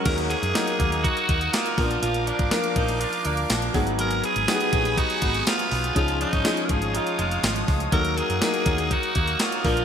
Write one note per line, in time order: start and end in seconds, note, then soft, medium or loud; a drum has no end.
0.00 0.10 G#3 medium
0.00 0.10 C#4 medium
0.00 0.10 F#4 medium
0.05 0.33 D#2 loud
0.05 1.77 F#3 medium
0.05 0.49 F#3 medium
0.05 0.49 A#3 medium
0.05 0.50 D#4 medium
0.05 0.17 A#4 loud
0.05 3.71 A#4 medium
0.05 0.50 A#4 medium
0.05 1.76 F#5 medium
0.05 1.76 D#6 medium
0.05 kick loud
0.05 closed hi-hat loud
0.05 crash medium
0.18 closed hi-hat medium
0.30 0.78 A#3 medium
0.30 1.06 G#4 loud
0.30 closed hi-hat medium
0.43 0.52 F#2 medium
0.43 closed hi-hat medium
0.54 1.42 F#3 medium
0.54 1.42 A#3 medium
0.54 1.27 D#4 medium
0.54 1.42 D#4 medium
0.54 1.42 A#4 medium
0.54 snare loud
0.54 closed hi-hat medium
0.54 tambourine medium
0.67 closed hi-hat medium
0.79 1.08 D#2 medium
0.79 1.53 A#3 medium
0.79 kick medium
0.79 closed hi-hat medium
0.92 closed hi-hat medium
1.04 1.83 F#4 medium
1.04 1.54 F#4 loud
1.04 kick medium
1.04 closed hi-hat medium
1.17 closed hi-hat soft
1.28 1.47 D#2 loud
1.28 1.83 D#4 medium
1.28 kick medium
1.28 closed hi-hat medium
1.41 closed hi-hat medium
1.53 1.83 A#3 medium
1.53 2.02 F4 medium
1.53 snare loud
1.53 closed hi-hat loud
1.53 tambourine medium
1.66 closed hi-hat medium
1.77 1.96 A#1 medium
1.77 2.43 F3 medium
1.77 2.01 F3 medium
1.77 2.43 A#3 medium
1.77 1.84 B3 medium
1.77 2.43 A#4 medium
1.77 3.73 F5 medium
1.77 3.73 D6 medium
1.77 kick loud
1.77 open hi-hat medium
1.84 2.46 D4 medium
1.91 closed hi-hat medium
2.02 2.30 A#1 loud
2.02 2.25 F3 medium
2.02 2.29 F4 loud
2.02 closed hi-hat loud
2.14 closed hi-hat medium
2.26 2.75 F3 medium
2.26 2.79 D4 medium
2.26 closed hi-hat medium
2.39 2.49 G#1 medium
2.39 kick medium
2.39 closed hi-hat medium
2.51 3.38 F3 medium
2.51 3.39 A#3 medium
2.51 3.24 A#3 medium
2.51 3.39 D4 medium
2.51 3.39 A#4 medium
2.51 snare loud
2.51 closed hi-hat loud
2.51 tambourine medium
2.64 closed hi-hat medium
2.76 3.04 A#1 medium
2.76 3.49 F3 medium
2.76 3.02 D#4 medium
2.76 kick loud
2.76 closed hi-hat medium
2.88 closed hi-hat medium
3.01 3.80 D4 medium
3.01 3.28 F4 loud
3.01 closed hi-hat medium
3.13 closed hi-hat soft
3.25 3.44 D2 medium
3.25 3.80 A#3 medium
3.25 3.75 D4 medium
3.25 closed hi-hat medium
3.37 closed hi-hat medium
3.50 3.68 A#1 loud
3.50 3.74 F3 medium
3.50 snare loud
3.50 closed hi-hat loud
3.50 tambourine medium
3.62 closed hi-hat medium
3.74 4.21 G#1 loud
3.74 4.40 F#3 medium
3.74 3.98 F#3 medium
3.74 4.40 B3 medium
3.74 4.40 D#4 medium
3.74 5.94 G#4 medium
3.74 4.40 G#4 medium
3.74 5.94 G#5 medium
3.74 5.94 B5 medium
3.74 kick loud
3.74 open hi-hat medium
3.87 closed hi-hat medium
3.99 4.23 F#3 medium
3.99 4.26 A#4 loud
3.99 closed hi-hat loud
4.11 closed hi-hat medium
4.24 4.72 F#3 medium
4.24 5.00 G#4 loud
4.24 closed hi-hat medium
4.36 4.45 G#1 medium
4.36 closed hi-hat medium
4.48 5.35 F#3 medium
4.48 5.35 B3 medium
4.48 5.21 B3 medium
4.48 5.35 D#4 medium
4.48 4.54 G4 medium
4.48 snare loud
4.48 closed hi-hat loud
4.48 tambourine medium
4.55 5.39 G#4 medium
4.60 closed hi-hat medium
4.73 5.01 A#1 medium
4.73 5.45 F#3 medium
4.73 kick loud
4.73 closed hi-hat medium
4.85 closed hi-hat medium
4.98 6.24 D#4 medium
4.98 5.47 F#4 loud
4.98 kick medium
4.98 closed hi-hat loud
5.10 closed hi-hat medium
5.22 5.41 G#1 medium
5.22 5.70 B3 medium
5.22 kick medium
5.22 closed hi-hat medium
5.34 closed hi-hat medium
5.46 5.95 F#3 medium
5.46 5.93 F4 loud
5.46 snare loud
5.46 closed hi-hat loud
5.46 tambourine medium
5.59 closed hi-hat medium
5.71 5.90 B1 loud
5.71 6.01 B3 medium
5.71 open hi-hat medium
5.84 closed hi-hat medium
5.95 6.24 C#2 loud
5.95 6.39 F3 medium
5.95 6.19 F3 medium
5.95 6.39 C#4 medium
5.95 6.39 D#4 medium
5.95 6.20 F4 loud
5.95 6.40 G#4 medium
5.95 7.91 C#5 medium
5.95 7.91 F5 medium
5.95 9.61 D#6 medium
5.95 kick loud
5.95 closed hi-hat loud
6.08 closed hi-hat medium
6.21 6.68 F3 medium
6.21 6.66 D#4 loud
6.21 closed hi-hat medium
6.33 6.42 G#1 medium
6.33 kick medium
6.33 closed hi-hat medium
6.45 7.32 F3 medium
6.45 7.17 G#3 medium
6.45 7.32 C#4 medium
6.45 7.32 D#4 medium
6.45 7.33 G#4 medium
6.45 snare loud
6.45 closed hi-hat loud
6.45 tambourine medium
6.57 closed hi-hat medium
6.65 6.73 A#4 medium
6.69 6.97 G#1 medium
6.69 7.42 F3 medium
6.69 6.98 G#4 medium
6.69 kick loud
6.69 closed hi-hat medium
6.82 closed hi-hat medium
6.94 7.97 D#4 medium
6.94 7.20 F4 medium
6.94 closed hi-hat loud
7.07 closed hi-hat soft
7.18 7.37 F1 loud
7.18 7.67 G#3 medium
7.18 7.66 F4 medium
7.18 closed hi-hat medium
7.31 closed hi-hat medium
7.43 7.62 G#1 loud
7.43 7.92 F3 medium
7.43 snare loud
7.43 closed hi-hat loud
7.43 tambourine medium
7.56 closed hi-hat medium
7.68 7.87 C#2 medium
7.68 7.97 G#3 medium
7.68 kick medium
7.68 open hi-hat medium
7.80 closed hi-hat medium
7.92 8.20 D#2 loud
7.92 8.36 F#3 medium
7.92 8.16 F#3 medium
7.92 8.36 A#3 medium
7.92 8.36 D#4 medium
7.92 7.99 A4 medium
7.92 8.19 A#4 loud
7.92 9.85 A#4 medium
7.92 9.64 F#5 medium
7.92 kick loud
7.92 closed hi-hat loud
7.99 8.39 A#4 medium
8.05 closed hi-hat medium
8.17 8.65 F#3 medium
8.17 8.94 G#4 loud
8.17 closed hi-hat medium
8.30 8.39 F#2 medium
8.30 closed hi-hat medium
8.42 9.29 F#3 medium
8.42 9.15 A#3 medium
8.42 9.29 A#3 medium
8.42 9.29 D#4 medium
8.42 9.30 A#4 medium
8.42 snare loud
8.42 closed hi-hat loud
8.42 tambourine medium
8.54 closed hi-hat medium
8.66 8.94 D#2 loud
8.66 9.39 F#3 medium
8.66 kick medium
8.66 closed hi-hat medium
8.78 closed hi-hat medium
8.91 9.70 D#4 medium
8.91 9.43 F#4 loud
8.91 kick medium
8.91 closed hi-hat medium
9.03 closed hi-hat soft
9.15 9.34 D#2 loud
9.15 9.70 A#3 medium
9.15 kick medium
9.15 closed hi-hat medium
9.27 closed hi-hat medium
9.39 9.65 F#3 medium
9.39 9.85 F4 loud
9.39 snare loud
9.39 closed hi-hat loud
9.39 tambourine medium
9.52 closed hi-hat medium
9.65 9.83 A#1 medium
9.65 9.85 F3 medium
9.65 9.85 A#3 medium
9.65 9.85 D4 medium
9.65 9.85 A#4 medium
9.65 9.85 F5 medium
9.65 9.85 D6 medium
9.65 kick loud
9.65 open hi-hat medium
9.77 closed hi-hat medium